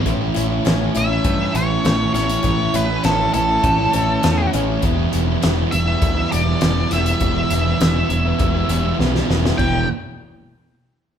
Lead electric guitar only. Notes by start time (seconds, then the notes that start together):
0.97 E5
1.56 C#5
2.14 C#5
2.75 B4
3.05 A4
3.34 A4
5.71 E5
6.32 D5
6.93 E5
9.58 G5